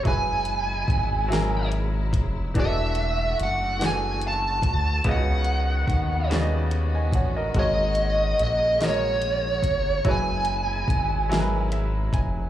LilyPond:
<<
  \new Staff \with { instrumentName = "Lead electric guitar" } { \time 6/8 \key fis \mixolydian \tempo 4. = 48 gis''2 r4 | e''4 fis''8 gis''8 a''4 | fis''4. r4. | dis''4 dis''8 cis''4. |
gis''2 r4 | }
  \new Staff \with { instrumentName = "Grand piano" } { \time 6/8 \key fis \mixolydian << { r2. | r2. | r2 r16 <dis'' gis''>16 <cis'' fis''>16 <ais' dis''>16~ | <ais' dis''>16 r2 r8. |
r2 e''8 gis''8 | } \\ { <fis e' gis' b'>4 r8 <fis e' gis' ais'>4 r8 | <e d' fis' gis' a'>4 r8 <e d' fis' gis' a'>4 r8 | <cis b eis' fis' dis''>4 r8 <cis b fis' d'' dis''>4 r8 | <gis fis' ais' cis''>4 r8 <gis fis' ais' dis''>4 r8 |
<fis e' gis' b'>4 r8 <fis e' gis' ais' b'>4 r8 | } >> }
  \new Staff \with { instrumentName = "String section" } { \clef bass \time 6/8 \key fis \mixolydian << { e'2. | fis'2. | fis'2.~ | fis'2. |
e'2. | } \\ { <b, gis>2. | <d a>2. | <dis b>2. | <cis ais>2. |
<b, gis>2. | } >> }
  \new Staff \with { instrumentName = "Analog synth bass" } { \clef bass \time 6/8 \key fis \mixolydian fis,,4 gis,,4. eis,,8 | e,,4 fis,,4. d,8 | cis,4 dis,4. a,,8 | gis,,4 ais,,4. g,,8 |
fis,,4 gis,,4. eis,,8 | }
  \new DrumStaff \with { instrumentName = "Drums" } \drummode { \time 6/8 <hh bd>8 hh8 <hh bd>8 <hh sn>8 hh8 <hh bd>8 | <hh bd>8 hh8 hh8 <hh sn>8 hh8 <hh bd>8 | <hh bd>8 hh8 <hh bd>8 <hh sn>8 hh8 <hh bd>8 | <hh bd>8 hh8 hh8 <hh sn>8 hh8 <hh bd>8 |
<hh bd>8 hh8 <hh bd>8 <hh sn>8 hh8 <hh bd>8 | }
>>